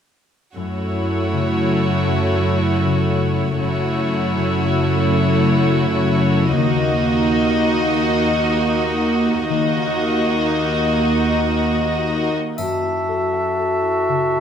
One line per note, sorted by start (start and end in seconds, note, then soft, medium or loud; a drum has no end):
0.56 3.59 F#2 soft
0.56 3.56 F#2 soft
0.56 3.56 A3 soft
0.56 3.56 E4 soft
0.56 3.56 F#4 soft
0.56 3.56 C#5 soft
0.95 2.47 E4 soft
1.33 2.09 C#3 soft
1.71 3.22 F#4 soft
2.10 2.85 C#3 soft
2.48 3.96 E4 soft
2.86 4.34 C#3 soft
3.23 4.73 F#4 soft
3.59 6.61 F#2 soft
3.59 6.54 F#2 soft
3.59 6.54 A3 soft
3.59 6.54 E4 soft
3.59 6.54 F#4 soft
3.59 6.54 C#5 soft
3.97 5.47 E4 soft
4.35 5.09 C#3 soft
5.11 5.84 C#3 soft
5.48 6.61 E4 soft
5.86 6.61 C#3 soft
6.21 7.66 F#4 soft
6.57 9.46 D#2 soft
6.57 9.48 D#3 soft
6.57 9.46 A#3 soft
6.57 9.46 D#4 soft
6.57 9.45 F#4 soft
6.57 9.48 D#5 soft
6.95 8.38 D#4 soft
7.67 9.12 F#4 soft
8.03 8.75 A#3 soft
8.39 9.85 D#4 soft
8.76 10.23 A#3 soft
9.13 10.61 F#4 soft
9.49 12.34 D#2 soft
9.49 12.61 D#3 soft
9.49 12.33 A#3 soft
9.49 12.33 D#4 soft
9.49 12.33 F#4 soft
9.49 12.33 D#5 soft
9.86 11.38 D#4 soft
10.24 11.00 A#3 soft
10.63 12.18 F#4 soft
11.39 12.61 D#4 soft
11.78 12.61 A#3 soft
12.19 14.40 F#4 soft
12.57 14.40 F#2 soft
12.57 14.40 F#4 soft
12.57 14.40 E5 soft
12.57 14.40 A5 soft
12.57 triangle soft
12.83 13.81 E4 soft
13.08 13.57 A4 soft
13.33 14.40 F#5 soft
13.58 14.40 A4 soft
13.82 14.33 E4 soft
14.09 14.40 C#3 soft
14.35 14.40 E4 soft